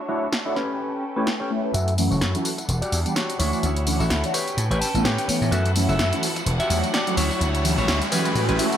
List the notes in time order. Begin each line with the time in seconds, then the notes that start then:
Already playing: D4 F#4 C#5 E5
0.09 A3 D4 E4 F#4 C#5
0.33 snare
0.45 A3 D4 E4 F#4 C#5
0.56 C#4 G4 A4 B4 G5, snare
1.16 A3 C#4 E4 G4 A4 B4 C#5
1.27 snare
1.40 C#4 G4 A4 C#5
1.50 A3 C#4 E4 G4 B4
1.64 A3 C#4 E4 G4 B4, muted clean electric guitar stroke
1.74 F#2 E4 F#4 A4 E5 F#5, closed hi-hat, tambourine, riser
1.88 closed hi-hat, tambourine
1.98 E3 F#3 A3 C#4 F#4, open hi-hat, tambourine
2.11 F#1 F#4 A4 C#5, tambourine
2.21 F#2, snare, closed hi-hat, tambourine
2.34 E3 F#3 A3 C#4 F#4, closed hi-hat, tambourine
2.45 open hi-hat, tambourine
2.58 muted clean electric guitar stroke, closed hi-hat, tambourine
2.68 E1 G3 D4, muted clean electric guitar stroke, closed hi-hat, tambourine
2.82 F#4 G4 D5, muted slap bass stroke, closed hi-hat, tambourine
2.92 E2, open hi-hat, tambourine
3.05 E3 G3 B3 D4 G4, closed hi-hat, tambourine
3.15 F#4 G4 C#5, snare, closed hi-hat, tambourine
3.30 closed hi-hat, tambourine
3.39 D2 E3 A3 C#4 D4 E4 F#4 C#5, open hi-hat, tambourine
3.52 E3 A3 C#4 D4 F#4, tambourine
3.63 D2, closed hi-hat, tambourine
3.76 closed hi-hat, tambourine
3.86 E3 A3 C#4 D4 F#4, open hi-hat, tambourine
3.99 A1 E4 F#4 A4, tambourine
4.10 D2, snare, closed hi-hat, tambourine
4.24 E3 A3 C#4 D4 F#4, closed hi-hat, tambourine
4.34 C#4 G4 B4 C#5 G5, open hi-hat, tambourine
4.48 closed hi-hat, tambourine
4.57 A2, closed hi-hat, tambourine
4.70 A1 G4 B4 C#5, closed hi-hat, tambourine
4.81 A5, open hi-hat, tambourine
4.94 A1 E3 A3 B3 C#4 A4, closed hi-hat, tambourine
5.04 A2 G4 B4 C#5 G5, snare, closed hi-hat, tambourine
5.18 closed hi-hat, tambourine
5.28 E3 A3 B3 C#4 G4 C#5, muted slap bass stroke, open hi-hat, tambourine
5.41 A2 E3 A3 B3 C#4 G4, tambourine
5.51 F#2 E4 F#4 A4 E5 F#5, closed hi-hat, tambourine
5.66 closed hi-hat, tambourine
5.76 E3 F#3 A3 C#4 F#4, open hi-hat, tambourine
5.89 F#1 F#4 A4 E5, tambourine
5.99 F#2, snare, closed hi-hat, tambourine
6.13 E3 F#3 A3 C#4 F#4, closed hi-hat, tambourine
6.23 open hi-hat, tambourine
6.36 muted clean electric guitar stroke, closed hi-hat, tambourine
6.46 E1 G3 D4, muted clean electric guitar stroke, closed hi-hat, tambourine
6.60 F#4 G4 E5, muted slap bass stroke, closed hi-hat, tambourine
6.70 E2 E3 F#3 A3 C#4 F#4, open hi-hat, tambourine
6.84 closed hi-hat, tambourine
6.93 F#4 G4 D5, snare, closed hi-hat, tambourine
7.07 E3 F#3 A3 C#4 F#4, closed hi-hat, tambourine
7.17 D2 E4 F#4 C#5, open hi-hat, tambourine
7.31 tambourine
7.41 D2, closed hi-hat, tambourine
7.55 closed hi-hat, tambourine
7.64 E3 F#3 A3 C#4 F#4, open hi-hat, tambourine
7.78 A1 E4 F#4 C#5, tambourine
7.88 D2, snare, closed hi-hat, tambourine
8.02 closed hi-hat, tambourine
8.12 E3 F#3 A3 C#4 F#4 G4 B4 B5, open hi-hat, tambourine
8.25 closed hi-hat, tambourine
8.35 A2 E3 F#3 A3 C#4 F#4, open hi-hat, tambourine
8.49 A1 C#4 G4 B4, closed hi-hat, tambourine
8.59 E3 F#3 A3 C#4 F#4 E5, open hi-hat, tambourine
8.72 closed hi-hat, tambourine